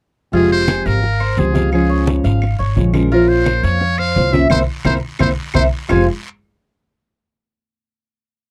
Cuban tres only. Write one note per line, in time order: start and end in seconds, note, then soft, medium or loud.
0.33 0.67 F4 medium
0.68 0.85 G#4 medium
0.86 1.19 F5 medium
1.20 1.54 C5 medium
1.55 1.89 F5 medium
1.90 2.23 C#5 medium
2.24 2.58 F5 medium
2.59 2.93 C#5 medium
2.93 3.11 A#4 medium
3.12 3.45 F4 medium
3.46 3.63 A#4 medium
3.64 3.97 F5 medium
3.98 4.32 C5 medium
4.33 4.49 E5 medium
4.50 4.62 A#4 loud
4.50 4.62 C5 medium
4.50 4.62 E5 medium
4.85 4.96 A#4 medium
4.85 4.96 C5 medium
4.85 4.96 E5 medium
5.19 5.31 A#4 medium
5.19 5.31 C5 medium
5.19 5.31 E5 medium
5.54 5.66 A#4 medium
5.54 5.66 C5 medium
5.54 5.66 E5 medium
5.89 6.05 F4 medium
5.89 6.06 C5 medium
5.89 6.06 F5 medium